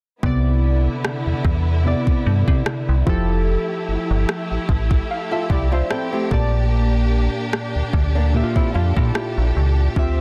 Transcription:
0.23 0.88 C2 loud
0.23 1.43 C3 medium
0.23 3.04 D3 medium
0.23 3.04 B3 medium
0.23 1.43 B3 medium
0.23 3.04 E4 medium
0.23 1.44 E4 medium
0.23 1.44 D5 medium
0.23 kick loud
1.05 cross-stick loud
1.27 1.34 E2 soft
1.45 1.95 E2 medium
1.45 kick medium
1.85 3.05 C3 medium
1.85 3.05 B3 medium
1.85 3.06 E4 medium
1.85 3.06 D5 medium
2.07 kick medium
2.26 2.44 G2 medium
2.48 2.63 C3 medium
2.48 kick medium
2.66 cross-stick loud
2.89 3.04 C2 medium
3.06 4.37 F3 medium
3.06 6.28 A3 medium
3.06 6.28 E4 medium
3.06 4.38 E4 medium
3.06 10.21 G4 medium
3.06 4.38 G4 medium
3.06 4.39 A4 medium
3.06 kick loud
3.89 3.97 G1 soft
4.11 4.25 G1 medium
4.29 cross-stick loud
4.51 4.59 A1 soft
4.69 5.02 A1 medium
4.69 kick medium
4.91 kick medium
5.11 5.31 F5 medium
5.31 5.49 F4 medium
5.31 5.49 A4 medium
5.31 5.50 E5 medium
5.50 5.83 C2 medium
5.50 5.71 E4 medium
5.50 5.71 G4 medium
5.50 5.72 D5 medium
5.50 kick medium
5.72 5.90 D4 medium
5.72 5.90 F4 medium
5.72 5.90 C5 medium
5.72 5.90 E5 medium
5.91 6.11 C4 medium
5.91 6.12 E4 medium
5.91 6.12 A4 medium
5.91 6.29 G5 medium
5.91 cross-stick loud
6.13 6.51 A3 medium
6.13 6.51 C4 medium
6.13 6.31 G4 medium
6.31 7.29 A#1 medium
6.31 7.61 A#2 medium
6.31 7.92 A#3 medium
6.31 7.62 A#3 medium
6.31 9.92 D4 medium
6.31 7.62 G4 medium
6.31 7.63 D5 medium
6.31 6.69 A5 medium
6.31 kick loud
7.53 cross-stick loud
7.76 7.83 D2 soft
7.93 8.44 D2 medium
7.93 9.94 A4 medium
7.93 kick medium
8.15 8.54 A#3 medium
8.15 8.54 D4 medium
8.34 9.54 A#2 medium
8.34 9.54 A#3 medium
8.34 9.55 G4 medium
8.34 8.42 E5 medium
8.43 9.58 F4 medium
8.56 8.74 C4 medium
8.56 8.74 E4 medium
8.56 kick medium
8.74 8.93 F2 medium
8.74 8.96 D4 medium
8.74 8.95 F4 medium
8.96 9.12 A#2 loud
8.96 9.92 E4 medium
8.96 9.92 G4 medium
8.96 kick medium
9.15 cross-stick loud
9.38 9.52 A#1 medium
9.56 9.89 C#2 medium
9.96 10.21 D2 loud
9.96 10.21 D3 medium
9.96 10.21 F3 medium
9.96 10.21 C4 medium
9.96 10.21 F4 medium
9.96 10.21 G4 medium
9.96 10.21 E5 medium
9.96 kick medium

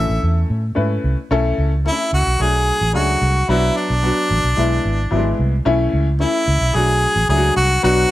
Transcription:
0.00 0.60 A3 medium
0.00 0.60 C#4 medium
0.00 0.60 E4 medium
0.00 0.60 A4 loud
0.00 0.46 E5 loud
0.09 0.19 A1 medium
0.23 0.43 E2 medium
0.50 0.70 A2 medium
0.75 0.97 G#2 medium
0.75 1.16 A3 medium
0.75 1.16 C#4 medium
0.75 1.16 E4 medium
0.75 1.17 B4 medium
1.04 1.14 C2 medium
1.31 1.51 B1 loud
1.31 1.71 A3 loud
1.31 1.71 C#4 loud
1.31 1.72 E4 loud
1.31 1.72 A4 loud
1.58 1.88 C#2 medium
1.85 2.25 A3 medium
1.85 1.92 C4 soft
1.85 2.26 E4 medium
1.85 2.12 E4 medium
1.85 2.26 A4 medium
1.92 2.29 C#4 medium
2.13 2.23 C#2 medium
2.13 2.43 F#4 medium
2.27 2.37 B1 medium
2.39 2.70 B1 medium
2.39 2.80 F#3 medium
2.39 2.80 A3 medium
2.39 2.80 D4 medium
2.39 2.80 F#4 medium
2.39 2.94 G#4 loud
2.81 2.95 A1 medium
2.93 3.15 C#2 medium
2.93 3.34 F#3 medium
2.93 3.34 A3 medium
2.93 3.34 D4 medium
2.93 3.51 F#4 medium
2.93 3.35 G#4 medium
3.22 3.42 C2 medium
3.49 3.69 B1 loud
3.49 3.89 F#3 medium
3.49 3.89 B3 medium
3.49 3.89 D4 medium
3.49 3.78 E4 loud
3.49 3.90 F#4 loud
3.77 5.40 D4 medium
3.90 4.10 B1 medium
4.03 4.43 F#3 medium
4.03 4.43 B3 medium
4.03 4.44 D4 medium
4.03 4.44 F#4 medium
4.31 4.41 A1 medium
4.44 4.54 B1 medium
4.57 4.78 B1 medium
4.57 4.97 E3 medium
4.57 4.98 G#3 medium
4.57 4.98 B3 medium
4.57 4.98 E4 medium
4.85 5.05 G#1 medium
5.11 5.32 G#1 medium
5.11 5.52 E3 medium
5.11 5.18 F#3 medium
5.11 5.52 B3 medium
5.11 5.52 E4 medium
5.17 5.55 G#3 medium
5.39 5.59 C2 medium
5.65 5.86 B1 loud
5.65 6.06 E3 loud
5.65 6.06 A3 loud
5.65 6.06 C#4 loud
5.65 6.06 E4 loud
5.93 6.24 C#2 loud
6.19 6.60 E3 medium
6.19 6.60 A3 medium
6.19 6.60 C#4 medium
6.19 6.61 E4 medium
6.19 6.77 E4 loud
6.48 6.58 C#2 medium
6.61 6.71 B1 medium
6.74 7.05 B1 medium
6.74 7.15 F#3 medium
6.74 7.15 A3 medium
6.74 7.15 D4 medium
6.74 7.15 F#4 medium
6.74 7.29 G#4 loud
7.16 7.26 A1 medium
7.29 7.49 C#2 medium
7.29 7.69 F#3 medium
7.29 7.69 A3 medium
7.29 7.70 D4 medium
7.29 7.36 E4 medium
7.29 7.55 G#4 loud
7.36 7.73 F#4 medium
7.56 7.77 C2 medium
7.56 7.82 F#4 loud
7.83 8.04 B1 loud
7.83 8.11 F#3 loud
7.83 8.11 B3 medium
7.83 8.11 D4 medium
7.83 8.11 F#4 loud

